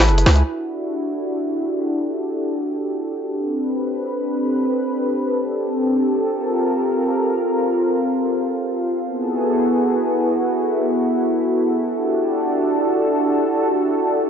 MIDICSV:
0, 0, Header, 1, 4, 480
1, 0, Start_track
1, 0, Key_signature, 1, "minor"
1, 0, Tempo, 500000
1, 13726, End_track
2, 0, Start_track
2, 0, Title_t, "Analog synth pad"
2, 0, Program_c, 0, 89
2, 0, Note_on_c, 0, 64, 78
2, 0, Note_on_c, 0, 68, 70
2, 0, Note_on_c, 0, 69, 67
2, 0, Note_on_c, 0, 71, 83
2, 391, Note_off_c, 0, 69, 0
2, 402, Note_off_c, 0, 64, 0
2, 402, Note_off_c, 0, 68, 0
2, 402, Note_off_c, 0, 71, 0
2, 422, Note_on_c, 0, 66, 67
2, 422, Note_on_c, 0, 69, 80
2, 423, Note_on_c, 0, 62, 73
2, 423, Note_on_c, 0, 64, 62
2, 425, Note_on_c, 0, 67, 69
2, 3156, Note_off_c, 0, 66, 0
2, 3157, Note_off_c, 0, 64, 0
2, 3188, Note_on_c, 0, 60, 75
2, 3190, Note_on_c, 0, 71, 81
2, 5905, Note_off_c, 0, 62, 0
2, 5920, Note_off_c, 0, 71, 0
2, 5945, Note_on_c, 0, 70, 82
2, 5947, Note_on_c, 0, 65, 69
2, 8664, Note_off_c, 0, 69, 0
2, 8665, Note_off_c, 0, 67, 0
2, 8667, Note_off_c, 0, 60, 0
2, 8677, Note_off_c, 0, 70, 0
2, 8678, Note_off_c, 0, 65, 0
2, 8708, Note_on_c, 0, 68, 64
2, 8709, Note_on_c, 0, 66, 70
2, 8709, Note_on_c, 0, 69, 81
2, 8710, Note_on_c, 0, 59, 71
2, 8710, Note_on_c, 0, 64, 64
2, 11438, Note_off_c, 0, 68, 0
2, 11439, Note_off_c, 0, 59, 0
2, 11465, Note_on_c, 0, 62, 70
2, 11465, Note_on_c, 0, 67, 65
2, 13726, Note_off_c, 0, 62, 0
2, 13726, Note_off_c, 0, 64, 0
2, 13726, Note_off_c, 0, 66, 0
2, 13726, Note_off_c, 0, 67, 0
2, 13726, Note_off_c, 0, 69, 0
2, 13726, End_track
3, 0, Start_track
3, 0, Title_t, "808-style bass"
3, 0, Program_c, 1, 38
3, 0, Note_on_c, 1, 33, 84
3, 84, Note_on_c, 1, 30, 90
3, 98, Note_off_c, 1, 33, 0
3, 239, Note_off_c, 1, 30, 0
3, 255, Note_on_c, 1, 37, 103
3, 411, Note_off_c, 1, 37, 0
3, 13726, End_track
4, 0, Start_track
4, 0, Title_t, "Drums"
4, 0, Note_on_c, 9, 38, 102
4, 0, Note_on_c, 9, 46, 65
4, 82, Note_on_c, 9, 42, 39
4, 96, Note_off_c, 9, 38, 0
4, 96, Note_off_c, 9, 46, 0
4, 172, Note_off_c, 9, 42, 0
4, 172, Note_on_c, 9, 42, 62
4, 252, Note_on_c, 9, 38, 97
4, 252, Note_on_c, 9, 46, 70
4, 268, Note_off_c, 9, 42, 0
4, 342, Note_on_c, 9, 42, 37
4, 348, Note_off_c, 9, 38, 0
4, 348, Note_off_c, 9, 46, 0
4, 438, Note_off_c, 9, 42, 0
4, 13726, End_track
0, 0, End_of_file